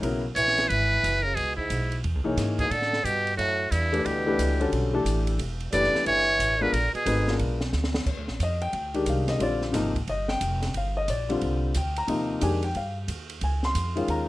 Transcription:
0.02 upright bass B1, grand piano C#3 F#3 B3 E4 A#4, ride
0.35 upright bass A#1, trombone E3, muted trumpet C#5, hi-hat pedal, ride
0.48 snare
0.58 snare, ride
0.68 upright bass G#1, trombone E3, muted trumpet B4, ride
1.03 upright bass F#1, hi-hat pedal, ride
1.23 trombone C#3, muted trumpet A#4
1.35 upright bass C#2, trombone B2, muted trumpet G#4, ride
1.56 trombone G#2, muted trumpet E4, kick
1.70 upright bass B1, hi-hat pedal, ride
1.92 ride
2.04 upright bass E2, ride
2.15 upright bass C#2
2.24 upright bass B1, grand piano E3 A#3 D#4 G#4 C#5
2.37 upright bass G#2, snare, hi-hat pedal, ride
2.59 trombone B2, muted trumpet G#4, kick, ride
2.71 upright bass A2, trombone D3, muted trumpet A4, ride
2.82 snare
2.93 snare
3.03 upright bass G2, trombone B2, muted trumpet G4, hi-hat pedal, ride
3.27 ride
3.36 upright bass F#2, trombone A2, muted trumpet F#4, ride
3.71 upright bass E2, trombone G2, muted trumpet E4, hi-hat pedal, ride
3.92 grand piano E3 A3 D4 G4 B4, ride
4.03 upright bass D2, trombone B2, muted trumpet G4, ride
4.27 grand piano E3 A3 D4 G4 B4
4.38 upright bass C#2, hi-hat pedal, ride
4.60 grand piano D3 G3 C#4 F#4 A4, ride
4.72 upright bass B1, ride
4.93 grand piano E3 A3 D4 G4 A4
5.05 upright bass A1, hi-hat pedal, ride
5.27 ride
5.38 upright bass E1, ride
5.60 ride
5.72 upright bass F#1, grand piano E3 A3 D4 G4 B4, trombone G3, muted trumpet D5, hi-hat pedal, ride
5.84 snare
5.94 muted upright bass stroke, snare
6.06 upright bass G1, trombone E3, muted trumpet C#5, ride
6.39 upright bass A1, hi-hat pedal, ride
6.60 trombone D3, grand piano G#3 B3 D4 F4 A#4, muted trumpet B4
6.72 upright bass A#1, trombone D3, muted trumpet A#4, ride
6.93 trombone B2, muted trumpet G#4, muted upright bass stroke, ride
7.06 upright bass G#1, grand piano A3 C4 D#4 F#4 B4, hi-hat pedal, ride
7.27 grand piano G#3 B3 D4 F4 A#4, snare
7.39 upright bass B1, ride
7.61 snare
7.73 upright bass D2, snare, hi-hat pedal
7.84 snare
7.94 snare
8.06 upright bass D#2, kick, crash
8.17 upright bass D2
8.28 upright bass A#1, snare
8.39 upright bass F2, grand piano D#5, hi-hat pedal, ride
8.61 grand piano G5, ride
8.73 upright bass D2, ride
8.94 grand piano D#3 G#3 D4 G4, ride
9.06 upright bass C2, grand piano F5, hi-hat pedal, ride
9.28 grand piano D#5, snare, ride
9.39 upright bass A#1, grand piano D3 G3 C4 F4 D5, ride
9.62 snare
9.73 upright bass G#1, grand piano C3 F3 A#3 D#4, snare, hi-hat pedal, ride
9.95 kick, ride
10.07 upright bass G1, grand piano D#5, ride
10.28 grand piano G5, snare
10.41 upright bass F1, hi-hat pedal, ride
10.62 snare, ride
10.74 upright bass G1, grand piano F5, ride
10.97 grand piano D#5
11.08 upright bass A#1, grand piano D5, hi-hat pedal, ride
11.29 grand piano D3 G3 C4 F4, ride
11.41 upright bass C2, ride
11.74 upright bass D2, grand piano G5, hi-hat pedal, ride
11.96 grand piano A#5, ride
12.07 upright bass D#2, grand piano C3 F3 A#3 D#4, ride
12.41 upright bass F2, grand piano D#3 G#3 D4 G4 G#5, hi-hat pedal, ride
12.63 grand piano G5, ride
12.75 upright bass G2, grand piano F5, ride
13.08 upright bass D#2, hi-hat pedal, ride
13.30 ride
13.41 upright bass C#2, grand piano G#5, ride
13.63 grand piano C6, snare
13.75 upright bass F2, hi-hat pedal, ride
13.95 grand piano D#3 G#3 C#4 F4, ride
14.08 upright bass D#2, grand piano A#5, ride

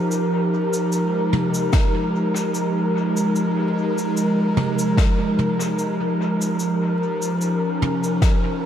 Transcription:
Already playing: analog synth pad F3 C#4 D#4 G4, synth texture A#4
0.11 cabasa
0.73 cabasa
0.91 analog synth pad G#3, cabasa
1.33 mid tom
1.54 cabasa
1.73 kick, snare, cabasa
2.36 cabasa
2.54 cabasa
3.17 cabasa
3.36 cabasa
3.98 cabasa
4.17 cabasa
4.57 mid tom
4.79 cabasa
4.97 kick, snare, cabasa
5.38 mid tom
5.61 cabasa
5.79 cabasa
6.42 cabasa
6.59 analog synth pad F3, cabasa
7.22 cabasa
7.30 analog synth pad C#4
7.41 cabasa
7.82 mid tom
8.04 cabasa
8.22 kick, snare, cabasa

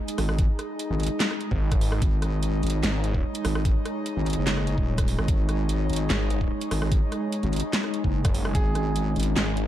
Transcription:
Already playing: analog synth pad G#3 D#4, supersaw synth G#3 D#4 G#4
0.08 closed hi-hat
0.18 wobble bass G#1, cross-stick, open hi-hat
0.29 cross-stick
0.39 kick, closed hi-hat
0.59 cross-stick, closed hi-hat
0.79 closed hi-hat
0.90 wobble bass G#1
1.00 closed hi-hat
1.03 closed hi-hat
1.07 closed hi-hat
1.20 snare, clap, closed hi-hat
1.31 cross-stick
1.41 closed hi-hat
1.51 detuned saw bass G#1, kick
1.72 kick, cross-stick, closed hi-hat
1.81 open hi-hat
1.92 cross-stick
2.02 wobble bass G#1, supersaw synth C#5, kick, closed hi-hat
2.22 cross-stick, closed hi-hat
2.43 closed hi-hat
2.63 wobble bass G#1, closed hi-hat
2.67 closed hi-hat
2.70 closed hi-hat
2.83 detuned saw bass G#1, snare, clap, closed hi-hat
3.04 closed hi-hat
3.14 kick
3.35 closed hi-hat
3.45 wobble bass G#1, cross-stick, open hi-hat
3.55 cross-stick
3.65 kick, closed hi-hat
3.85 cross-stick, closed hi-hat
4.06 closed hi-hat
4.17 wobble bass G#1
4.26 closed hi-hat
4.30 closed hi-hat
4.33 wobble bass F#1, closed hi-hat
4.47 snare, clap, closed hi-hat
4.57 cross-stick
4.67 closed hi-hat
4.78 wobble bass D#1, kick
4.98 kick, cross-stick, closed hi-hat
5.08 open hi-hat
5.19 wobble bass G#1, cross-stick
5.28 wobble bass G#1, kick, closed hi-hat
5.49 cross-stick, closed hi-hat
5.69 closed hi-hat
5.90 wobble bass G#1, closed hi-hat
5.93 closed hi-hat
5.96 closed hi-hat
6.10 detuned saw bass G#1, snare, clap, closed hi-hat
6.30 closed hi-hat
6.41 kick
6.61 closed hi-hat
6.71 wobble bass G#1, cross-stick, open hi-hat
6.82 cross-stick
6.92 kick, closed hi-hat
7.12 cross-stick, closed hi-hat
7.32 closed hi-hat
7.43 wobble bass G#1, closed hi-hat
7.53 closed hi-hat
7.56 closed hi-hat
7.60 closed hi-hat
7.73 snare, clap, closed hi-hat
7.84 cross-stick
7.94 closed hi-hat
8.04 wobble bass F#1, kick
8.25 detuned saw bass F#1, kick, cross-stick, closed hi-hat
8.34 open hi-hat
8.45 cross-stick
8.55 wobble bass G#1, supersaw synth C#4 G#4, grand piano G#4, kick, closed hi-hat
8.75 cross-stick, closed hi-hat
8.96 closed hi-hat
9.16 wobble bass G#1, closed hi-hat
9.20 closed hi-hat
9.23 closed hi-hat
9.36 detuned saw bass G#1, snare, clap, closed hi-hat
9.57 closed hi-hat

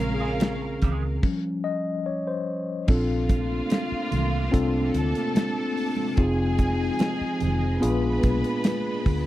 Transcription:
Already playing: fingered electric bass A#1, tine electric piano C#3 G#3 C4 A#4, string machine C#3 G#3 A#3 F4, string section C#4 A#4 F5
0.00 muted clean electric guitar stroke, closed hi-hat, muted conga
0.14 tine electric piano G#4
0.20 clean electric guitar G#3 C#4 F4 G#4
0.40 muted clean electric guitar stroke, snare, closed hi-hat, high conga
0.62 muted clean electric guitar stroke
0.82 fingered electric bass C#2, clean electric guitar G#3 C#4 F4 G#4, kick, closed hi-hat, low conga
1.03 muted clean electric guitar stroke
1.23 tine electric piano F3 G3 C#4, kick, crash
1.64 tine electric piano D#5
2.06 tine electric piano C#5
2.27 tine electric piano C5
2.88 fingered electric bass A#1, string machine C3 A3 A#3 D4, tine electric piano C4 D4 F4 A4, string section F4 F5, kick, crash, muted conga
3.29 kick, closed hi-hat, muted conga
3.70 snare, closed hi-hat, high conga
3.92 muted fingered electric bass stroke
4.12 fingered electric bass C2, closed hi-hat, low conga
4.52 fingered electric bass C2, tine electric piano C4 D4 F4 A4, kick, closed hi-hat
4.94 fingered electric bass D2, string section A4 A5, closed hi-hat, muted conga
5.15 closed hi-hat
5.35 snare, closed hi-hat, high conga
5.77 open hi-hat
5.96 high conga
6.17 fingered electric bass F1, string machine F3 G#3 D#4, tine electric piano C4 D#4 F4 G#4, string section G#4 G#5, kick, closed hi-hat, muted conga
6.59 kick, closed hi-hat, muted conga
6.99 snare, closed hi-hat, high conga
7.21 muted fingered electric bass stroke
7.40 fingered electric bass F1, closed hi-hat, low conga
7.80 fingered electric bass A#1, string machine A#2 B3 D4, tine electric piano B3 D4 F4 G#4, string section B4 B5, closed hi-hat
8.23 fingered electric bass B1, kick, snare, closed hi-hat, muted conga
8.44 closed hi-hat
8.64 snare, closed hi-hat, high conga
9.06 fingered electric bass D2, kick, open hi-hat

